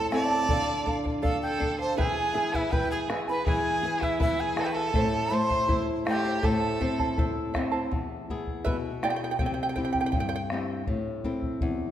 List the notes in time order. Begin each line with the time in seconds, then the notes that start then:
Already playing: A2 E4 A4 E5 A5
0.11 C4 E4 A4 E5 A5, bombo rim
0.15 D5
0.31 E4 A4 A5
0.49 D3 A4 D5 F5, bombo low
0.85 D4 A4 D5 F5, bombo low
1.04 D5 F5, bombo low
1.22 A4 D5 F5, bombo low
1.42 A4 G5
1.58 D4 A4 D5 F5, bombo low
1.79 C5 D5 F5 A5
1.97 E3 E4 G#4 B4 E5 G#5, bombo low
2.34 E4 G#4 B4 E5 G#5
2.53 E4 B4 E5 G#5, bombo low
2.70 E4 B4 E5 G5 G#5, bombo low
2.91 G#4 G#5
3.09 E4 G#4 B4 E5 G#5, bombo rim
3.28 E4 B4 G#5 B5
3.32 B4
3.46 E3 E4 G#4 B4 E5 G#5, bombo low
3.83 E4 G#4 B4 E5 G#5
4.01 E4 B4 E5 G#5, bombo low
4.19 E4 B4 E5 G#5, bombo low
4.40 G#4 G#5
4.56 E4 G#4 B4 E5 G#5 A5, bombo rim
4.60 A4 G5
4.67 B4
4.72 A4 G#5 A5
4.77 E4 B4
4.94 A2 E4 A4 C5 E5 A5, bombo low
5.30 A3 E4 C5 E5 A5
5.34 C6
5.49 E4 C5 A5, bombo low
5.68 E4 C5 E5 A5, bombo low
6.05 A3 E4 C5 E5 G5 A5, bombo rim
6.10 G4
6.24 E4 C5 A5
6.43 A2 E4 A4 C5 E5 A5, bombo low
6.81 C4 E4 C5 E5 A5, bombo low
6.99 E4 C5 A5, bombo low
7.18 E4 A4 C5 E5 A5, bombo low
7.54 C4 E4 C5 E5 A5, bombo rim, bombo low
7.71 E4 C5 A5
7.91 E2, bombo low
8.29 B3 E4 G#4, bombo low
8.47 bombo low
8.65 B2 B4 E5, bombo low
9.02 B3 E4 G#4 D5 G5, bombo rim
9.10 G5
9.16 G5
9.24 G5
9.31 G5
9.39 C3 G5, bombo low
9.46 G5
9.54 G5
9.63 G5
9.69 G5
9.76 C4 E4 G4 G5, bombo low
9.85 G5
9.93 G5, bombo low
10.01 G5
10.06 G5
10.12 G2 G5, bombo low
10.20 G5
10.29 G5
10.36 G5
10.50 C4 E4 G4, bombo rim
10.87 A2, bombo low
11.24 C4 E4 A4, bombo low
11.42 bombo low
11.61 E2, bombo low